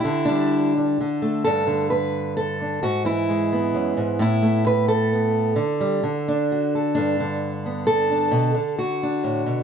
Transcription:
0, 0, Header, 1, 2, 480
1, 0, Start_track
1, 0, Key_signature, 1, "major"
1, 0, Tempo, 464396
1, 44, Time_signature, 3, 2, 24, 8
1, 2445, Tempo, 457666
1, 10065, End_track
2, 0, Start_track
2, 0, Title_t, "Steel-string acoustic guitar"
2, 0, Program_c, 0, 25
2, 2, Note_on_c, 0, 64, 91
2, 50, Note_on_c, 0, 50, 74
2, 261, Note_on_c, 0, 62, 80
2, 302, Note_on_c, 0, 55, 58
2, 740, Note_off_c, 0, 64, 0
2, 771, Note_off_c, 0, 55, 0
2, 795, Note_on_c, 0, 55, 44
2, 1006, Note_off_c, 0, 50, 0
2, 1020, Note_off_c, 0, 55, 0
2, 1040, Note_on_c, 0, 50, 67
2, 1262, Note_on_c, 0, 57, 57
2, 1466, Note_off_c, 0, 57, 0
2, 1477, Note_off_c, 0, 62, 0
2, 1493, Note_on_c, 0, 69, 91
2, 1514, Note_on_c, 0, 43, 73
2, 1714, Note_off_c, 0, 50, 0
2, 1727, Note_on_c, 0, 50, 54
2, 1961, Note_off_c, 0, 69, 0
2, 1965, Note_on_c, 0, 71, 97
2, 2442, Note_off_c, 0, 71, 0
2, 2446, Note_on_c, 0, 69, 93
2, 2708, Note_on_c, 0, 62, 41
2, 2908, Note_off_c, 0, 62, 0
2, 2910, Note_off_c, 0, 43, 0
2, 2925, Note_off_c, 0, 50, 0
2, 2926, Note_off_c, 0, 69, 0
2, 2930, Note_on_c, 0, 66, 88
2, 2931, Note_on_c, 0, 44, 75
2, 3160, Note_on_c, 0, 52, 57
2, 3168, Note_off_c, 0, 66, 0
2, 3172, Note_on_c, 0, 64, 80
2, 3418, Note_on_c, 0, 56, 48
2, 3663, Note_on_c, 0, 59, 46
2, 3886, Note_off_c, 0, 44, 0
2, 3892, Note_on_c, 0, 42, 63
2, 4124, Note_off_c, 0, 42, 0
2, 4129, Note_on_c, 0, 44, 60
2, 4328, Note_off_c, 0, 52, 0
2, 4337, Note_off_c, 0, 56, 0
2, 4361, Note_on_c, 0, 45, 79
2, 4363, Note_off_c, 0, 64, 0
2, 4364, Note_off_c, 0, 44, 0
2, 4387, Note_on_c, 0, 64, 91
2, 4604, Note_on_c, 0, 57, 60
2, 4853, Note_off_c, 0, 64, 0
2, 4859, Note_on_c, 0, 71, 106
2, 5081, Note_off_c, 0, 71, 0
2, 5085, Note_on_c, 0, 69, 96
2, 5326, Note_off_c, 0, 59, 0
2, 5342, Note_on_c, 0, 59, 50
2, 5769, Note_off_c, 0, 57, 0
2, 5792, Note_on_c, 0, 50, 74
2, 5796, Note_off_c, 0, 45, 0
2, 5808, Note_off_c, 0, 59, 0
2, 6052, Note_on_c, 0, 55, 59
2, 6274, Note_off_c, 0, 50, 0
2, 6284, Note_off_c, 0, 55, 0
2, 6293, Note_on_c, 0, 50, 69
2, 6553, Note_on_c, 0, 62, 59
2, 6798, Note_on_c, 0, 66, 47
2, 7032, Note_off_c, 0, 69, 0
2, 7044, Note_on_c, 0, 69, 43
2, 7237, Note_off_c, 0, 62, 0
2, 7238, Note_off_c, 0, 66, 0
2, 7238, Note_off_c, 0, 69, 0
2, 7251, Note_on_c, 0, 62, 82
2, 7271, Note_on_c, 0, 43, 71
2, 7504, Note_off_c, 0, 50, 0
2, 7516, Note_on_c, 0, 50, 59
2, 7995, Note_on_c, 0, 59, 48
2, 8215, Note_on_c, 0, 69, 96
2, 8452, Note_off_c, 0, 62, 0
2, 8468, Note_on_c, 0, 62, 44
2, 8672, Note_off_c, 0, 43, 0
2, 8672, Note_off_c, 0, 59, 0
2, 8683, Note_on_c, 0, 47, 74
2, 8914, Note_off_c, 0, 50, 0
2, 8925, Note_off_c, 0, 47, 0
2, 8927, Note_on_c, 0, 50, 59
2, 9170, Note_off_c, 0, 69, 0
2, 9178, Note_on_c, 0, 66, 82
2, 9432, Note_off_c, 0, 62, 0
2, 9436, Note_on_c, 0, 62, 45
2, 9653, Note_on_c, 0, 45, 65
2, 9885, Note_off_c, 0, 45, 0
2, 9889, Note_on_c, 0, 47, 61
2, 10065, Note_off_c, 0, 47, 0
2, 10065, Note_off_c, 0, 50, 0
2, 10065, Note_off_c, 0, 62, 0
2, 10065, Note_off_c, 0, 66, 0
2, 10065, End_track
0, 0, End_of_file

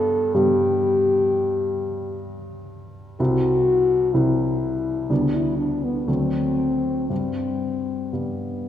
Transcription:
0, 0, Header, 1, 3, 480
1, 0, Start_track
1, 0, Key_signature, 1, "major"
1, 0, Tempo, 947867
1, 1616, Time_signature, 4, 2, 24, 8
1, 2094, Tempo, 969305
1, 3054, Tempo, 1030928
1, 4270, End_track
2, 0, Start_track
2, 0, Title_t, "French horn"
2, 0, Program_c, 0, 60
2, 0, Note_on_c, 0, 69, 81
2, 177, Note_on_c, 0, 67, 80
2, 184, Note_off_c, 0, 69, 0
2, 1134, Note_off_c, 0, 67, 0
2, 1624, Note_on_c, 0, 66, 83
2, 2103, Note_on_c, 0, 64, 64
2, 2111, Note_off_c, 0, 66, 0
2, 2576, Note_on_c, 0, 62, 60
2, 2583, Note_off_c, 0, 64, 0
2, 2696, Note_on_c, 0, 64, 62
2, 2703, Note_off_c, 0, 62, 0
2, 2810, Note_off_c, 0, 64, 0
2, 2813, Note_on_c, 0, 62, 62
2, 2938, Note_on_c, 0, 59, 53
2, 2945, Note_off_c, 0, 62, 0
2, 3060, Note_on_c, 0, 60, 66
2, 3067, Note_off_c, 0, 59, 0
2, 3529, Note_off_c, 0, 60, 0
2, 3532, Note_on_c, 0, 60, 59
2, 4012, Note_on_c, 0, 59, 43
2, 4019, Note_off_c, 0, 60, 0
2, 4270, Note_off_c, 0, 59, 0
2, 4270, End_track
3, 0, Start_track
3, 0, Title_t, "Grand piano"
3, 0, Program_c, 1, 0
3, 0, Control_c, 1, 64, 127
3, 0, Note_on_c, 1, 43, 56
3, 0, Note_on_c, 1, 55, 49
3, 0, Note_on_c, 1, 59, 47
3, 0, Note_on_c, 1, 62, 47
3, 160, Note_off_c, 1, 43, 0
3, 160, Note_off_c, 1, 55, 0
3, 160, Note_off_c, 1, 59, 0
3, 160, Note_off_c, 1, 62, 0
3, 175, Note_on_c, 1, 55, 38
3, 175, Note_on_c, 1, 59, 39
3, 175, Note_on_c, 1, 62, 37
3, 179, Note_on_c, 1, 43, 49
3, 1597, Note_off_c, 1, 55, 0
3, 1597, Note_off_c, 1, 59, 0
3, 1597, Note_off_c, 1, 62, 0
3, 1599, Note_off_c, 1, 43, 0
3, 1619, Note_on_c, 1, 60, 38
3, 1620, Note_on_c, 1, 36, 51
3, 1620, Note_on_c, 1, 64, 39
3, 1621, Note_on_c, 1, 55, 37
3, 1624, Control_c, 1, 64, 0
3, 1697, Control_c, 1, 64, 127
3, 2081, Note_off_c, 1, 60, 0
3, 2082, Note_off_c, 1, 36, 0
3, 2082, Note_off_c, 1, 55, 0
3, 2082, Note_off_c, 1, 64, 0
3, 2095, Note_on_c, 1, 64, 33
3, 2097, Note_on_c, 1, 55, 32
3, 2098, Note_on_c, 1, 60, 31
3, 2099, Note_on_c, 1, 36, 44
3, 2559, Note_off_c, 1, 64, 0
3, 2560, Note_off_c, 1, 36, 0
3, 2560, Note_off_c, 1, 55, 0
3, 2560, Note_off_c, 1, 60, 0
3, 2571, Note_on_c, 1, 55, 34
3, 2572, Note_on_c, 1, 38, 43
3, 2572, Note_on_c, 1, 59, 36
3, 2572, Note_on_c, 1, 62, 36
3, 2580, Control_c, 1, 64, 0
3, 2649, Control_c, 1, 64, 127
3, 3040, Note_off_c, 1, 38, 0
3, 3040, Note_off_c, 1, 55, 0
3, 3040, Note_off_c, 1, 59, 0
3, 3040, Note_off_c, 1, 62, 0
3, 3055, Note_on_c, 1, 38, 37
3, 3055, Note_on_c, 1, 54, 30
3, 3055, Note_on_c, 1, 57, 31
3, 3055, Note_on_c, 1, 62, 30
3, 3064, Control_c, 1, 64, 0
3, 3153, Control_c, 1, 64, 127
3, 3518, Note_off_c, 1, 38, 0
3, 3518, Note_off_c, 1, 54, 0
3, 3518, Note_off_c, 1, 57, 0
3, 3518, Note_off_c, 1, 62, 0
3, 3530, Note_on_c, 1, 62, 31
3, 3531, Note_on_c, 1, 43, 34
3, 3533, Note_on_c, 1, 55, 31
3, 3542, Control_c, 1, 64, 0
3, 3628, Control_c, 1, 64, 127
3, 3999, Note_off_c, 1, 43, 0
3, 3999, Note_off_c, 1, 62, 0
3, 4000, Note_off_c, 1, 55, 0
3, 4011, Note_on_c, 1, 43, 30
3, 4011, Note_on_c, 1, 55, 25
3, 4012, Note_on_c, 1, 62, 23
3, 4270, Note_off_c, 1, 43, 0
3, 4270, Note_off_c, 1, 55, 0
3, 4270, Note_off_c, 1, 62, 0
3, 4270, End_track
0, 0, End_of_file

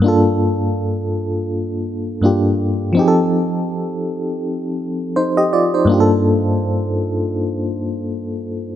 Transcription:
0, 0, Header, 1, 2, 480
1, 0, Start_track
1, 0, Key_signature, -2, "minor"
1, 0, Tempo, 731707
1, 22, Time_signature, 4, 2, 24, 8
1, 5745, End_track
2, 0, Start_track
2, 0, Title_t, "FM electric piano"
2, 0, Program_c, 0, 5
2, 0, Note_on_c, 0, 43, 64
2, 12, Note_on_c, 0, 58, 61
2, 26, Note_on_c, 0, 62, 59
2, 40, Note_on_c, 0, 65, 62
2, 54, Note_on_c, 0, 69, 72
2, 138, Control_c, 0, 64, 127
2, 1423, Note_off_c, 0, 43, 0
2, 1431, Note_off_c, 0, 58, 0
2, 1438, Note_off_c, 0, 62, 0
2, 1445, Note_off_c, 0, 65, 0
2, 1451, Note_off_c, 0, 69, 0
2, 1453, Note_on_c, 0, 43, 53
2, 1459, Note_on_c, 0, 58, 46
2, 1466, Note_on_c, 0, 62, 45
2, 1474, Note_on_c, 0, 65, 48
2, 1480, Note_on_c, 0, 67, 55
2, 1919, Note_on_c, 0, 53, 66
2, 1934, Note_on_c, 0, 60, 65
2, 1937, Note_off_c, 0, 43, 0
2, 1941, Note_off_c, 0, 58, 0
2, 1944, Note_off_c, 0, 62, 0
2, 1948, Note_off_c, 0, 65, 0
2, 1948, Note_on_c, 0, 63, 62
2, 1949, Control_c, 0, 64, 0
2, 1951, Note_off_c, 0, 67, 0
2, 1962, Note_on_c, 0, 67, 65
2, 1976, Note_on_c, 0, 68, 62
2, 2008, Note_off_c, 0, 68, 0
2, 2019, Note_on_c, 0, 69, 78
2, 2075, Control_c, 0, 64, 127
2, 3359, Note_off_c, 0, 63, 0
2, 3366, Note_off_c, 0, 67, 0
2, 3386, Note_on_c, 0, 72, 60
2, 3390, Note_on_c, 0, 63, 49
2, 3394, Note_off_c, 0, 69, 0
2, 3516, Note_off_c, 0, 72, 0
2, 3518, Note_off_c, 0, 63, 0
2, 3524, Note_on_c, 0, 75, 62
2, 3529, Note_on_c, 0, 67, 53
2, 3619, Note_off_c, 0, 75, 0
2, 3621, Note_off_c, 0, 67, 0
2, 3627, Note_on_c, 0, 74, 62
2, 3631, Note_on_c, 0, 65, 53
2, 3757, Note_off_c, 0, 74, 0
2, 3759, Note_off_c, 0, 65, 0
2, 3766, Note_on_c, 0, 72, 55
2, 3769, Note_on_c, 0, 63, 50
2, 3824, Note_off_c, 0, 53, 0
2, 3831, Note_off_c, 0, 60, 0
2, 3838, Note_on_c, 0, 43, 73
2, 3852, Note_on_c, 0, 58, 68
2, 3867, Note_on_c, 0, 62, 64
2, 3869, Control_c, 0, 64, 0
2, 3881, Note_on_c, 0, 65, 64
2, 3894, Note_on_c, 0, 67, 61
2, 3927, Note_off_c, 0, 67, 0
2, 3937, Note_on_c, 0, 69, 78
2, 3980, Control_c, 0, 64, 127
2, 3991, Note_off_c, 0, 72, 0
2, 3993, Note_off_c, 0, 63, 0
2, 5744, Note_off_c, 0, 43, 0
2, 5745, Note_off_c, 0, 58, 0
2, 5745, Note_off_c, 0, 62, 0
2, 5745, Note_off_c, 0, 65, 0
2, 5745, Note_off_c, 0, 69, 0
2, 5745, End_track
0, 0, End_of_file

